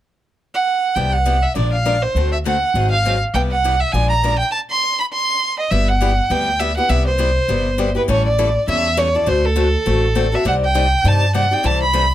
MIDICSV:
0, 0, Header, 1, 4, 480
1, 0, Start_track
1, 0, Tempo, 296589
1, 1565, Time_signature, 4, 2, 24, 8
1, 19654, End_track
2, 0, Start_track
2, 0, Title_t, "Violin"
2, 0, Program_c, 0, 40
2, 884, Note_on_c, 0, 78, 74
2, 1544, Note_on_c, 0, 79, 67
2, 1568, Note_off_c, 0, 78, 0
2, 1827, Note_on_c, 0, 78, 67
2, 1851, Note_off_c, 0, 79, 0
2, 2311, Note_on_c, 0, 76, 63
2, 2335, Note_off_c, 0, 78, 0
2, 2520, Note_off_c, 0, 76, 0
2, 2529, Note_on_c, 0, 74, 69
2, 2785, Note_off_c, 0, 74, 0
2, 2799, Note_on_c, 0, 77, 68
2, 3280, Note_on_c, 0, 72, 69
2, 3304, Note_off_c, 0, 77, 0
2, 3750, Note_off_c, 0, 72, 0
2, 3759, Note_on_c, 0, 76, 64
2, 3852, Note_off_c, 0, 76, 0
2, 3970, Note_on_c, 0, 78, 72
2, 4673, Note_off_c, 0, 78, 0
2, 4710, Note_on_c, 0, 77, 80
2, 5163, Note_off_c, 0, 77, 0
2, 5404, Note_on_c, 0, 79, 74
2, 5530, Note_off_c, 0, 79, 0
2, 5686, Note_on_c, 0, 78, 75
2, 6155, Note_on_c, 0, 76, 69
2, 6180, Note_off_c, 0, 78, 0
2, 6352, Note_on_c, 0, 80, 76
2, 6376, Note_off_c, 0, 76, 0
2, 6611, Note_off_c, 0, 80, 0
2, 6621, Note_on_c, 0, 82, 83
2, 7078, Note_off_c, 0, 82, 0
2, 7101, Note_on_c, 0, 79, 77
2, 7300, Note_off_c, 0, 79, 0
2, 7310, Note_on_c, 0, 81, 77
2, 7438, Note_off_c, 0, 81, 0
2, 7603, Note_on_c, 0, 84, 87
2, 8049, Note_off_c, 0, 84, 0
2, 8089, Note_on_c, 0, 83, 75
2, 8179, Note_off_c, 0, 83, 0
2, 8298, Note_on_c, 0, 84, 82
2, 8995, Note_off_c, 0, 84, 0
2, 9051, Note_on_c, 0, 75, 69
2, 9239, Note_on_c, 0, 76, 78
2, 9263, Note_off_c, 0, 75, 0
2, 9528, Note_on_c, 0, 78, 75
2, 9552, Note_off_c, 0, 76, 0
2, 10215, Note_on_c, 0, 79, 82
2, 10240, Note_off_c, 0, 78, 0
2, 10676, Note_on_c, 0, 76, 76
2, 10700, Note_off_c, 0, 79, 0
2, 10944, Note_off_c, 0, 76, 0
2, 10954, Note_on_c, 0, 78, 80
2, 11160, Note_on_c, 0, 76, 80
2, 11184, Note_off_c, 0, 78, 0
2, 11437, Note_off_c, 0, 76, 0
2, 11445, Note_on_c, 0, 72, 74
2, 12815, Note_off_c, 0, 72, 0
2, 12889, Note_on_c, 0, 71, 72
2, 12978, Note_off_c, 0, 71, 0
2, 13111, Note_on_c, 0, 73, 73
2, 13343, Note_off_c, 0, 73, 0
2, 13353, Note_on_c, 0, 74, 84
2, 13989, Note_off_c, 0, 74, 0
2, 14064, Note_on_c, 0, 76, 88
2, 14535, Note_on_c, 0, 73, 76
2, 14559, Note_off_c, 0, 76, 0
2, 14818, Note_on_c, 0, 74, 79
2, 14842, Note_off_c, 0, 73, 0
2, 15028, Note_on_c, 0, 72, 76
2, 15052, Note_off_c, 0, 74, 0
2, 15295, Note_on_c, 0, 69, 79
2, 15319, Note_off_c, 0, 72, 0
2, 16747, Note_on_c, 0, 76, 77
2, 16771, Note_off_c, 0, 69, 0
2, 16935, Note_off_c, 0, 76, 0
2, 16950, Note_on_c, 0, 78, 79
2, 17067, Note_off_c, 0, 78, 0
2, 17230, Note_on_c, 0, 79, 83
2, 17928, Note_on_c, 0, 81, 90
2, 17953, Note_off_c, 0, 79, 0
2, 18364, Note_off_c, 0, 81, 0
2, 18373, Note_on_c, 0, 78, 81
2, 18660, Note_on_c, 0, 79, 84
2, 18685, Note_off_c, 0, 78, 0
2, 18869, Note_on_c, 0, 81, 85
2, 18894, Note_off_c, 0, 79, 0
2, 19129, Note_off_c, 0, 81, 0
2, 19139, Note_on_c, 0, 83, 85
2, 19654, Note_off_c, 0, 83, 0
2, 19654, End_track
3, 0, Start_track
3, 0, Title_t, "Steel-string acoustic guitar"
3, 0, Program_c, 1, 25
3, 1551, Note_on_c, 1, 48, 58
3, 1556, Note_on_c, 1, 55, 57
3, 1562, Note_on_c, 1, 59, 56
3, 1563, Note_on_c, 1, 64, 57
3, 1565, Note_on_c, 1, 67, 64
3, 1866, Note_off_c, 1, 48, 0
3, 1868, Note_off_c, 1, 55, 0
3, 1871, Note_off_c, 1, 59, 0
3, 1872, Note_off_c, 1, 64, 0
3, 1873, Note_off_c, 1, 67, 0
3, 2030, Note_on_c, 1, 48, 65
3, 2033, Note_on_c, 1, 55, 66
3, 2039, Note_on_c, 1, 59, 77
3, 2042, Note_on_c, 1, 67, 70
3, 2043, Note_on_c, 1, 64, 78
3, 2207, Note_off_c, 1, 48, 0
3, 2208, Note_off_c, 1, 55, 0
3, 2211, Note_off_c, 1, 59, 0
3, 2212, Note_off_c, 1, 67, 0
3, 2213, Note_off_c, 1, 64, 0
3, 2507, Note_on_c, 1, 53, 54
3, 2516, Note_on_c, 1, 56, 59
3, 2516, Note_on_c, 1, 62, 59
3, 2521, Note_on_c, 1, 70, 56
3, 2528, Note_on_c, 1, 65, 58
3, 2824, Note_off_c, 1, 53, 0
3, 2829, Note_off_c, 1, 56, 0
3, 2829, Note_off_c, 1, 62, 0
3, 2831, Note_off_c, 1, 70, 0
3, 2834, Note_off_c, 1, 65, 0
3, 2998, Note_on_c, 1, 53, 57
3, 3002, Note_on_c, 1, 62, 72
3, 3003, Note_on_c, 1, 56, 67
3, 3011, Note_on_c, 1, 70, 70
3, 3015, Note_on_c, 1, 65, 67
3, 3171, Note_off_c, 1, 53, 0
3, 3173, Note_off_c, 1, 56, 0
3, 3173, Note_off_c, 1, 62, 0
3, 3177, Note_off_c, 1, 70, 0
3, 3179, Note_off_c, 1, 65, 0
3, 3493, Note_on_c, 1, 50, 54
3, 3499, Note_on_c, 1, 57, 56
3, 3502, Note_on_c, 1, 66, 58
3, 3505, Note_on_c, 1, 60, 55
3, 3510, Note_on_c, 1, 69, 62
3, 3798, Note_off_c, 1, 50, 0
3, 3801, Note_off_c, 1, 57, 0
3, 3802, Note_off_c, 1, 66, 0
3, 3803, Note_off_c, 1, 60, 0
3, 3806, Note_off_c, 1, 69, 0
3, 3972, Note_on_c, 1, 50, 64
3, 3977, Note_on_c, 1, 57, 67
3, 3980, Note_on_c, 1, 60, 70
3, 3981, Note_on_c, 1, 66, 74
3, 3985, Note_on_c, 1, 69, 80
3, 4138, Note_off_c, 1, 50, 0
3, 4141, Note_off_c, 1, 57, 0
3, 4142, Note_off_c, 1, 60, 0
3, 4143, Note_off_c, 1, 66, 0
3, 4145, Note_off_c, 1, 69, 0
3, 4452, Note_on_c, 1, 54, 57
3, 4453, Note_on_c, 1, 51, 56
3, 4456, Note_on_c, 1, 60, 56
3, 4460, Note_on_c, 1, 68, 57
3, 4462, Note_on_c, 1, 63, 62
3, 4757, Note_off_c, 1, 54, 0
3, 4758, Note_off_c, 1, 51, 0
3, 4759, Note_off_c, 1, 60, 0
3, 4761, Note_off_c, 1, 68, 0
3, 4762, Note_off_c, 1, 63, 0
3, 4941, Note_on_c, 1, 54, 68
3, 4944, Note_on_c, 1, 51, 61
3, 4948, Note_on_c, 1, 60, 63
3, 4954, Note_on_c, 1, 68, 72
3, 4957, Note_on_c, 1, 63, 67
3, 5103, Note_off_c, 1, 54, 0
3, 5104, Note_off_c, 1, 51, 0
3, 5106, Note_off_c, 1, 60, 0
3, 5109, Note_off_c, 1, 68, 0
3, 5111, Note_off_c, 1, 63, 0
3, 5417, Note_on_c, 1, 48, 56
3, 5424, Note_on_c, 1, 55, 54
3, 5427, Note_on_c, 1, 59, 62
3, 5432, Note_on_c, 1, 64, 64
3, 5433, Note_on_c, 1, 67, 57
3, 5720, Note_off_c, 1, 48, 0
3, 5723, Note_off_c, 1, 55, 0
3, 5725, Note_off_c, 1, 59, 0
3, 5727, Note_off_c, 1, 64, 0
3, 5728, Note_off_c, 1, 67, 0
3, 5896, Note_on_c, 1, 48, 69
3, 5898, Note_on_c, 1, 55, 65
3, 5907, Note_on_c, 1, 64, 69
3, 5908, Note_on_c, 1, 59, 66
3, 5912, Note_on_c, 1, 67, 82
3, 6060, Note_off_c, 1, 48, 0
3, 6061, Note_off_c, 1, 55, 0
3, 6066, Note_off_c, 1, 59, 0
3, 6066, Note_off_c, 1, 64, 0
3, 6068, Note_off_c, 1, 67, 0
3, 6375, Note_on_c, 1, 53, 53
3, 6378, Note_on_c, 1, 56, 67
3, 6384, Note_on_c, 1, 62, 57
3, 6387, Note_on_c, 1, 70, 64
3, 6389, Note_on_c, 1, 65, 68
3, 6678, Note_off_c, 1, 53, 0
3, 6680, Note_off_c, 1, 56, 0
3, 6683, Note_off_c, 1, 62, 0
3, 6685, Note_off_c, 1, 65, 0
3, 6685, Note_off_c, 1, 70, 0
3, 6852, Note_on_c, 1, 53, 61
3, 6856, Note_on_c, 1, 56, 73
3, 6865, Note_on_c, 1, 62, 68
3, 6869, Note_on_c, 1, 65, 70
3, 6871, Note_on_c, 1, 70, 68
3, 7018, Note_off_c, 1, 53, 0
3, 7020, Note_off_c, 1, 56, 0
3, 7025, Note_off_c, 1, 62, 0
3, 7027, Note_off_c, 1, 65, 0
3, 7028, Note_off_c, 1, 70, 0
3, 9245, Note_on_c, 1, 55, 58
3, 9253, Note_on_c, 1, 59, 56
3, 9253, Note_on_c, 1, 64, 58
3, 9263, Note_on_c, 1, 67, 68
3, 9552, Note_off_c, 1, 55, 0
3, 9556, Note_off_c, 1, 59, 0
3, 9556, Note_off_c, 1, 64, 0
3, 9561, Note_off_c, 1, 67, 0
3, 9720, Note_on_c, 1, 55, 70
3, 9732, Note_on_c, 1, 59, 75
3, 9737, Note_on_c, 1, 64, 78
3, 9739, Note_on_c, 1, 67, 81
3, 9891, Note_off_c, 1, 55, 0
3, 9896, Note_off_c, 1, 59, 0
3, 9899, Note_off_c, 1, 64, 0
3, 9900, Note_off_c, 1, 67, 0
3, 10196, Note_on_c, 1, 55, 59
3, 10203, Note_on_c, 1, 59, 63
3, 10208, Note_on_c, 1, 64, 62
3, 10211, Note_on_c, 1, 67, 66
3, 10507, Note_off_c, 1, 55, 0
3, 10510, Note_off_c, 1, 59, 0
3, 10513, Note_off_c, 1, 64, 0
3, 10514, Note_off_c, 1, 67, 0
3, 10676, Note_on_c, 1, 55, 68
3, 10683, Note_on_c, 1, 59, 72
3, 10688, Note_on_c, 1, 64, 73
3, 10695, Note_on_c, 1, 67, 72
3, 10848, Note_off_c, 1, 55, 0
3, 10851, Note_off_c, 1, 59, 0
3, 10854, Note_off_c, 1, 64, 0
3, 10857, Note_off_c, 1, 67, 0
3, 10960, Note_on_c, 1, 67, 46
3, 10971, Note_on_c, 1, 64, 45
3, 10979, Note_on_c, 1, 59, 43
3, 11136, Note_off_c, 1, 59, 0
3, 11148, Note_off_c, 1, 64, 0
3, 11151, Note_off_c, 1, 67, 0
3, 11153, Note_on_c, 1, 48, 62
3, 11155, Note_on_c, 1, 55, 60
3, 11156, Note_on_c, 1, 59, 68
3, 11167, Note_on_c, 1, 64, 67
3, 11170, Note_on_c, 1, 67, 67
3, 11465, Note_off_c, 1, 48, 0
3, 11465, Note_off_c, 1, 55, 0
3, 11466, Note_off_c, 1, 59, 0
3, 11472, Note_off_c, 1, 64, 0
3, 11473, Note_off_c, 1, 67, 0
3, 11620, Note_on_c, 1, 48, 70
3, 11629, Note_on_c, 1, 55, 78
3, 11630, Note_on_c, 1, 59, 76
3, 11637, Note_on_c, 1, 64, 75
3, 11639, Note_on_c, 1, 67, 85
3, 11799, Note_off_c, 1, 48, 0
3, 11803, Note_off_c, 1, 55, 0
3, 11804, Note_off_c, 1, 59, 0
3, 11807, Note_off_c, 1, 64, 0
3, 11809, Note_off_c, 1, 67, 0
3, 12111, Note_on_c, 1, 48, 60
3, 12118, Note_on_c, 1, 55, 61
3, 12120, Note_on_c, 1, 59, 65
3, 12122, Note_on_c, 1, 64, 68
3, 12127, Note_on_c, 1, 67, 67
3, 12423, Note_off_c, 1, 48, 0
3, 12427, Note_off_c, 1, 55, 0
3, 12427, Note_off_c, 1, 59, 0
3, 12428, Note_off_c, 1, 64, 0
3, 12431, Note_off_c, 1, 67, 0
3, 12593, Note_on_c, 1, 48, 75
3, 12593, Note_on_c, 1, 55, 71
3, 12598, Note_on_c, 1, 64, 72
3, 12602, Note_on_c, 1, 59, 74
3, 12607, Note_on_c, 1, 67, 80
3, 12765, Note_off_c, 1, 48, 0
3, 12765, Note_off_c, 1, 55, 0
3, 12768, Note_off_c, 1, 64, 0
3, 12770, Note_off_c, 1, 59, 0
3, 12772, Note_off_c, 1, 67, 0
3, 12863, Note_on_c, 1, 67, 51
3, 12883, Note_on_c, 1, 64, 44
3, 12891, Note_on_c, 1, 59, 39
3, 13065, Note_off_c, 1, 67, 0
3, 13074, Note_on_c, 1, 52, 65
3, 13075, Note_off_c, 1, 64, 0
3, 13078, Note_off_c, 1, 59, 0
3, 13080, Note_on_c, 1, 55, 61
3, 13087, Note_on_c, 1, 61, 73
3, 13092, Note_on_c, 1, 69, 78
3, 13094, Note_on_c, 1, 64, 69
3, 13384, Note_off_c, 1, 52, 0
3, 13387, Note_off_c, 1, 55, 0
3, 13390, Note_off_c, 1, 61, 0
3, 13393, Note_off_c, 1, 69, 0
3, 13394, Note_off_c, 1, 64, 0
3, 13569, Note_on_c, 1, 52, 74
3, 13573, Note_on_c, 1, 55, 77
3, 13574, Note_on_c, 1, 61, 75
3, 13576, Note_on_c, 1, 64, 78
3, 13576, Note_on_c, 1, 69, 83
3, 13733, Note_off_c, 1, 52, 0
3, 13735, Note_off_c, 1, 55, 0
3, 13735, Note_off_c, 1, 61, 0
3, 13736, Note_off_c, 1, 64, 0
3, 13736, Note_off_c, 1, 69, 0
3, 14045, Note_on_c, 1, 52, 60
3, 14049, Note_on_c, 1, 55, 60
3, 14051, Note_on_c, 1, 61, 68
3, 14056, Note_on_c, 1, 64, 70
3, 14056, Note_on_c, 1, 69, 63
3, 14350, Note_off_c, 1, 52, 0
3, 14351, Note_off_c, 1, 55, 0
3, 14352, Note_off_c, 1, 61, 0
3, 14355, Note_off_c, 1, 64, 0
3, 14355, Note_off_c, 1, 69, 0
3, 14519, Note_on_c, 1, 52, 71
3, 14520, Note_on_c, 1, 55, 77
3, 14523, Note_on_c, 1, 61, 79
3, 14524, Note_on_c, 1, 64, 78
3, 14528, Note_on_c, 1, 69, 67
3, 14688, Note_off_c, 1, 52, 0
3, 14688, Note_off_c, 1, 55, 0
3, 14690, Note_off_c, 1, 61, 0
3, 14690, Note_off_c, 1, 64, 0
3, 14692, Note_off_c, 1, 69, 0
3, 14803, Note_on_c, 1, 69, 47
3, 14813, Note_on_c, 1, 64, 42
3, 14823, Note_on_c, 1, 61, 39
3, 14986, Note_off_c, 1, 69, 0
3, 14990, Note_off_c, 1, 61, 0
3, 14991, Note_on_c, 1, 57, 62
3, 14994, Note_on_c, 1, 50, 61
3, 14995, Note_off_c, 1, 64, 0
3, 14996, Note_on_c, 1, 60, 66
3, 15002, Note_on_c, 1, 66, 66
3, 15005, Note_on_c, 1, 69, 65
3, 15302, Note_off_c, 1, 57, 0
3, 15304, Note_off_c, 1, 50, 0
3, 15305, Note_off_c, 1, 60, 0
3, 15308, Note_off_c, 1, 66, 0
3, 15310, Note_off_c, 1, 69, 0
3, 15465, Note_on_c, 1, 50, 80
3, 15470, Note_on_c, 1, 57, 66
3, 15476, Note_on_c, 1, 60, 77
3, 15480, Note_on_c, 1, 66, 77
3, 15481, Note_on_c, 1, 69, 72
3, 15641, Note_off_c, 1, 50, 0
3, 15643, Note_off_c, 1, 57, 0
3, 15646, Note_off_c, 1, 60, 0
3, 15648, Note_off_c, 1, 66, 0
3, 15648, Note_off_c, 1, 69, 0
3, 15954, Note_on_c, 1, 50, 60
3, 15955, Note_on_c, 1, 57, 66
3, 15958, Note_on_c, 1, 60, 64
3, 15966, Note_on_c, 1, 66, 65
3, 15967, Note_on_c, 1, 69, 70
3, 16264, Note_off_c, 1, 50, 0
3, 16264, Note_off_c, 1, 57, 0
3, 16266, Note_off_c, 1, 60, 0
3, 16270, Note_off_c, 1, 66, 0
3, 16270, Note_off_c, 1, 69, 0
3, 16430, Note_on_c, 1, 50, 68
3, 16432, Note_on_c, 1, 57, 66
3, 16435, Note_on_c, 1, 60, 70
3, 16441, Note_on_c, 1, 69, 74
3, 16442, Note_on_c, 1, 66, 75
3, 16603, Note_off_c, 1, 50, 0
3, 16604, Note_off_c, 1, 57, 0
3, 16606, Note_off_c, 1, 60, 0
3, 16609, Note_off_c, 1, 66, 0
3, 16609, Note_off_c, 1, 69, 0
3, 16703, Note_on_c, 1, 69, 50
3, 16718, Note_on_c, 1, 66, 42
3, 16730, Note_on_c, 1, 60, 39
3, 16894, Note_off_c, 1, 60, 0
3, 16905, Note_off_c, 1, 69, 0
3, 16912, Note_off_c, 1, 66, 0
3, 16912, Note_on_c, 1, 55, 69
3, 16913, Note_on_c, 1, 48, 57
3, 16913, Note_on_c, 1, 60, 60
3, 16918, Note_on_c, 1, 63, 69
3, 16921, Note_on_c, 1, 67, 70
3, 16923, Note_on_c, 1, 74, 63
3, 17224, Note_off_c, 1, 48, 0
3, 17224, Note_off_c, 1, 55, 0
3, 17224, Note_off_c, 1, 60, 0
3, 17226, Note_off_c, 1, 63, 0
3, 17228, Note_off_c, 1, 67, 0
3, 17229, Note_off_c, 1, 74, 0
3, 17390, Note_on_c, 1, 48, 72
3, 17394, Note_on_c, 1, 55, 77
3, 17398, Note_on_c, 1, 60, 73
3, 17401, Note_on_c, 1, 63, 82
3, 17402, Note_on_c, 1, 67, 79
3, 17407, Note_on_c, 1, 74, 75
3, 17564, Note_off_c, 1, 48, 0
3, 17566, Note_off_c, 1, 55, 0
3, 17568, Note_off_c, 1, 60, 0
3, 17570, Note_off_c, 1, 63, 0
3, 17570, Note_off_c, 1, 67, 0
3, 17572, Note_off_c, 1, 74, 0
3, 17878, Note_on_c, 1, 48, 59
3, 17879, Note_on_c, 1, 55, 67
3, 17883, Note_on_c, 1, 60, 66
3, 17885, Note_on_c, 1, 67, 61
3, 17889, Note_on_c, 1, 63, 69
3, 17890, Note_on_c, 1, 74, 66
3, 18187, Note_off_c, 1, 48, 0
3, 18188, Note_off_c, 1, 55, 0
3, 18190, Note_off_c, 1, 60, 0
3, 18191, Note_off_c, 1, 67, 0
3, 18192, Note_off_c, 1, 63, 0
3, 18193, Note_off_c, 1, 74, 0
3, 18355, Note_on_c, 1, 48, 67
3, 18358, Note_on_c, 1, 60, 72
3, 18361, Note_on_c, 1, 55, 75
3, 18363, Note_on_c, 1, 63, 67
3, 18371, Note_on_c, 1, 67, 68
3, 18371, Note_on_c, 1, 74, 79
3, 18527, Note_off_c, 1, 48, 0
3, 18529, Note_off_c, 1, 60, 0
3, 18530, Note_off_c, 1, 55, 0
3, 18531, Note_off_c, 1, 63, 0
3, 18535, Note_off_c, 1, 67, 0
3, 18535, Note_off_c, 1, 74, 0
3, 18628, Note_on_c, 1, 74, 46
3, 18632, Note_on_c, 1, 67, 41
3, 18641, Note_on_c, 1, 63, 43
3, 18652, Note_on_c, 1, 60, 42
3, 18817, Note_off_c, 1, 60, 0
3, 18822, Note_on_c, 1, 48, 60
3, 18829, Note_off_c, 1, 63, 0
3, 18829, Note_off_c, 1, 74, 0
3, 18831, Note_off_c, 1, 67, 0
3, 18834, Note_on_c, 1, 52, 69
3, 18835, Note_on_c, 1, 55, 66
3, 18836, Note_on_c, 1, 60, 69
3, 18839, Note_on_c, 1, 64, 70
3, 18841, Note_on_c, 1, 69, 65
3, 19140, Note_off_c, 1, 48, 0
3, 19146, Note_off_c, 1, 52, 0
3, 19146, Note_off_c, 1, 55, 0
3, 19147, Note_off_c, 1, 60, 0
3, 19149, Note_off_c, 1, 64, 0
3, 19150, Note_off_c, 1, 69, 0
3, 19309, Note_on_c, 1, 48, 75
3, 19313, Note_on_c, 1, 52, 79
3, 19318, Note_on_c, 1, 55, 72
3, 19319, Note_on_c, 1, 64, 81
3, 19322, Note_on_c, 1, 60, 79
3, 19328, Note_on_c, 1, 69, 85
3, 19485, Note_off_c, 1, 48, 0
3, 19487, Note_off_c, 1, 52, 0
3, 19489, Note_off_c, 1, 55, 0
3, 19490, Note_off_c, 1, 64, 0
3, 19492, Note_off_c, 1, 60, 0
3, 19494, Note_off_c, 1, 69, 0
3, 19654, End_track
4, 0, Start_track
4, 0, Title_t, "Upright bass"
4, 0, Program_c, 2, 32
4, 1552, Note_on_c, 2, 36, 65
4, 2326, Note_off_c, 2, 36, 0
4, 2523, Note_on_c, 2, 34, 70
4, 3293, Note_off_c, 2, 34, 0
4, 3476, Note_on_c, 2, 38, 66
4, 4249, Note_off_c, 2, 38, 0
4, 4437, Note_on_c, 2, 32, 68
4, 5209, Note_off_c, 2, 32, 0
4, 5403, Note_on_c, 2, 36, 66
4, 6172, Note_off_c, 2, 36, 0
4, 6365, Note_on_c, 2, 34, 70
4, 7134, Note_off_c, 2, 34, 0
4, 9246, Note_on_c, 2, 31, 77
4, 10012, Note_off_c, 2, 31, 0
4, 10196, Note_on_c, 2, 38, 68
4, 10966, Note_off_c, 2, 38, 0
4, 11155, Note_on_c, 2, 36, 75
4, 11925, Note_off_c, 2, 36, 0
4, 12113, Note_on_c, 2, 31, 71
4, 12883, Note_off_c, 2, 31, 0
4, 13083, Note_on_c, 2, 33, 75
4, 13849, Note_off_c, 2, 33, 0
4, 14041, Note_on_c, 2, 40, 69
4, 14808, Note_off_c, 2, 40, 0
4, 15004, Note_on_c, 2, 38, 75
4, 15770, Note_off_c, 2, 38, 0
4, 15968, Note_on_c, 2, 33, 70
4, 16733, Note_off_c, 2, 33, 0
4, 16916, Note_on_c, 2, 36, 72
4, 17686, Note_off_c, 2, 36, 0
4, 17873, Note_on_c, 2, 43, 75
4, 18645, Note_off_c, 2, 43, 0
4, 18842, Note_on_c, 2, 36, 78
4, 19612, Note_off_c, 2, 36, 0
4, 19654, End_track
0, 0, End_of_file